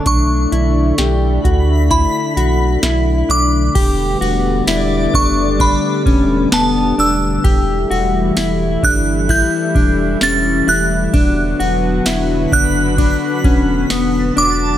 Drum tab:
CC |--------|x-------|--------|--------|
RD |--------|xxxxxxxx|xxxxxxxx|xxxxxxxx|
HH |xxxxxxxx|--------|--------|--------|
TB |--------|--x---x-|--x---x-|--x---x-|
SD |--o---o-|--o---o-|--o---o-|--o---o-|
BD |o--oo---|o--ooo--|o--ooo--|o--ooo--|